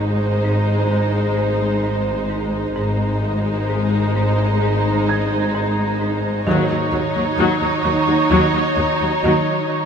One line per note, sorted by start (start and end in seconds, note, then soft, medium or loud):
0.00 2.71 G#1 medium
0.00 0.26 G#2 medium
0.00 2.72 G#2 medium
0.00 2.72 G#3 medium
0.00 2.72 D#4 medium
0.00 2.72 C5 medium
0.45 0.72 G#2 medium
0.91 1.19 G#2 medium
1.37 1.65 G#2 medium
1.84 2.11 G#2 medium
2.30 2.58 G#2 medium
2.75 6.42 G#1 medium
2.75 6.42 G#2 medium
2.75 3.04 G#2 medium
2.75 6.42 G#3 medium
2.75 6.42 D#4 medium
2.75 6.42 C5 medium
3.23 3.51 G#2 medium
3.69 3.97 G#2 medium
4.16 4.44 G#2 medium
4.63 4.91 G#2 medium
5.09 5.36 G#2 medium
5.09 7.81 G#6 soft
5.55 5.82 G#2 medium
6.01 6.28 G#2 medium
6.46 6.54 D#2 medium
6.46 6.74 D#3 medium
6.46 7.81 D#3 medium
6.46 6.68 F#3 medium
6.46 9.85 D#4 medium
6.46 9.85 C#5 medium
6.70 6.78 D#2 medium
6.70 6.78 F#3 medium
6.92 7.01 D#2 medium
6.92 7.20 D#3 medium
6.92 7.00 F#3 medium
7.16 7.24 D#2 soft
7.16 7.24 F#3 medium
7.38 7.46 D#2 medium
7.38 7.47 D#2 medium
7.38 7.66 D#3 medium
7.38 7.60 F#3 medium
7.61 7.69 D#2 medium
7.61 7.70 F#3 medium
7.84 7.92 D#2 medium
7.84 7.93 D#2 soft
7.84 8.12 D#3 medium
7.84 7.93 F#3 soft
8.07 8.15 D#2 medium
8.07 8.16 F#3 soft
8.30 8.38 D#2 medium
8.30 8.40 D#2 medium
8.30 8.59 D#3 medium
8.30 8.52 F#3 medium
8.54 8.62 D#2 medium
8.54 8.62 F#3 medium
8.77 8.85 D#2 medium
8.77 9.05 D#3 medium
8.77 8.85 F#3 medium
9.01 9.09 D#2 medium
9.01 9.09 F#3 soft
9.24 9.32 D#2 medium
9.24 9.52 D#3 medium
9.24 9.45 F#3 medium
9.70 9.85 D#3 medium